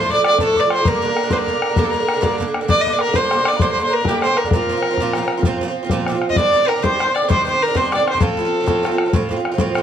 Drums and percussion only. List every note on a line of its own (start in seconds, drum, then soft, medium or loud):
0.10 bodhran soft
0.24 bodhran medium
0.38 bodhran medium
0.56 bodhran soft
0.70 bodhran medium
0.85 bodhran medium
1.17 bodhran medium
1.30 bodhran medium
1.47 bodhran soft
1.62 bodhran medium
1.76 bodhran medium
1.94 bodhran soft
2.09 bodhran medium
2.23 bodhran medium
2.40 bodhran soft
2.54 bodhran medium
2.69 bodhran medium
2.86 bodhran soft
2.99 bodhran soft
3.14 bodhran medium
3.31 bodhran medium
3.45 bodhran medium
3.60 bodhran medium
3.76 bodhran soft
4.05 bodhran medium
4.22 bodhran medium
4.37 bodhran medium
4.44 bodhran soft
4.51 bodhran medium
4.68 bodhran soft
4.83 bodhran medium
4.97 bodhran medium
5.13 bodhran medium
5.28 bodhran medium
5.43 bodhran medium
5.60 bodhran soft
5.89 bodhran medium
6.06 bodhran medium
6.22 bodhran medium
6.30 bodhran soft
6.36 bodhran medium
6.54 bodhran soft
6.69 bodhran medium
6.84 bodhran medium
7.00 bodhran medium
7.16 bodhran medium
7.30 bodhran medium
7.47 bodhran soft
7.75 bodhran medium
7.92 bodhran medium
8.08 bodhran medium
8.15 bodhran soft
8.21 bodhran medium
8.37 bodhran soft
8.67 bodhran medium
8.85 bodhran medium
8.98 bodhran medium
9.13 bodhran medium
9.31 bodhran soft
9.45 bodhran medium
9.58 bodhran medium
9.75 bodhran medium